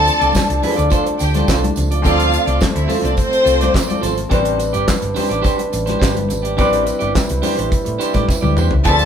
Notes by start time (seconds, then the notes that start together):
Already playing: C3 F3 A3 C4 D4 A4 A5
0.05 muted clean electric guitar stroke, closed hi-hat, tambourine
0.20 C2 F4 A4 D5, closed hi-hat
0.33 muted clean electric guitar stroke, kick, snare, tambourine, muted conga, high conga
0.37 clap
0.48 C2, muted clean electric guitar stroke, closed hi-hat, muted conga
0.62 F4 A4 C5, open hi-hat, high conga, low conga
0.76 D2 F4 A4 D5, closed hi-hat
0.90 F4 A4 C5, kick, closed hi-hat, tambourine, muted conga
1.05 muted clean electric guitar stroke, closed hi-hat, muted conga
1.19 D2 G4 G5, muted clean electric guitar stroke, closed hi-hat, tambourine
1.34 F4 A4 C5, snare, closed hi-hat, high conga
1.48 C2 F4 A4 C5, kick, snare, clap, tambourine, muted conga
1.62 muted clean electric guitar stroke, closed hi-hat, high conga
1.76 C#2, muted clean electric guitar stroke, closed hi-hat, tambourine, low conga
1.91 F4 A4 D5, closed hi-hat
2.02 D2 F3 C4 D4 F4 A4 F5, kick, closed hi-hat, tambourine, muted conga, low conga
2.06 D5
2.20 closed hi-hat, muted conga
2.32 muted clean electric guitar stroke, closed hi-hat, tambourine
2.47 C2 F4 A4 D5, closed hi-hat
2.60 muted clean electric guitar stroke, kick, snare, clap, tambourine, high conga
2.74 D2 E4 E5, muted clean electric guitar stroke, closed hi-hat, muted conga
2.88 F4 A4 C5, open hi-hat, high conga, low conga
3.02 C2 D4 F4 A4 C5 D5, closed hi-hat
3.16 C4 C5, muted clean electric guitar stroke, kick, closed hi-hat, tambourine, muted conga
3.30 muted clean electric guitar stroke, closed hi-hat
3.44 C2 F4 A4 C5, closed hi-hat, tambourine
3.60 F4 A4 D5, snare, closed hi-hat, high conga
3.74 muted clean electric guitar stroke, kick, snare, clap, tambourine, muted conga
3.88 F4 A4 D5, closed hi-hat, muted conga, high conga
4.01 G#1 F4 A4 C5, closed hi-hat, tambourine, low conga
4.16 muted clean electric guitar stroke, closed hi-hat
4.29 A1 G3 C4 D4 G4 B4 C5, kick, closed hi-hat, tambourine, muted conga, low conga
4.45 closed hi-hat
4.58 muted clean electric guitar stroke, closed hi-hat, tambourine
4.73 G1 D4 G4 D5, closed hi-hat
4.87 muted clean electric guitar stroke, kick, snare, clap, tambourine, high conga
5.01 G1, muted clean electric guitar stroke, closed hi-hat, muted conga
5.14 D4 G4 C5, open hi-hat, high conga, low conga
5.30 A1 D4 G4 D5, closed hi-hat
5.41 D4 G4 C5, kick, closed hi-hat, tambourine, muted conga
5.58 muted clean electric guitar stroke, closed hi-hat, muted conga
5.72 A1, muted clean electric guitar stroke, closed hi-hat, tambourine
5.86 D4 G4 C5, snare, closed hi-hat, high conga
5.99 G1 D4 G4 C5, kick, snare
6.03 clap, tambourine
6.15 muted clean electric guitar stroke, closed hi-hat, muted conga, high conga
6.28 G#1, muted clean electric guitar stroke, closed hi-hat, tambourine, low conga
6.42 D4 G4 D5, closed hi-hat
6.57 A1 G3 C4 D4 E4 G4 B4 D5, kick, closed hi-hat, tambourine, muted conga, low conga
6.73 closed hi-hat
6.85 muted clean electric guitar stroke, closed hi-hat, tambourine
6.99 G1 D4 G4 D5, closed hi-hat
7.14 muted clean electric guitar stroke, kick, snare, clap, tambourine, muted conga, high conga
7.29 C2, muted clean electric guitar stroke, closed hi-hat, muted conga
7.42 D4 G4 C5, open hi-hat, tambourine, high conga, low conga
7.56 A1 D4 G4 C5, closed hi-hat
7.71 muted clean electric guitar stroke, kick, closed hi-hat, tambourine
7.85 A2, muted clean electric guitar stroke, closed hi-hat, muted conga
7.99 D4 G4 C5, closed hi-hat, tambourine
8.14 A2 D4 G4 D5, kick, snare, closed hi-hat, high conga
8.27 muted clean electric guitar stroke, kick, snare, tambourine, muted conga
8.41 D2 D4 G4 D5, high tom, muted conga, high conga
8.57 E2 D4 G4 C5, mid tom, tambourine, low conga
8.71 C#2, muted clean electric guitar stroke, floor tom
8.85 D2 F3 A3 C4 D4 E4 G#4 A4 B4 A5, kick, closed hi-hat, muted conga, low conga
8.96 F4 A4 C5, closed hi-hat
9.00 muted conga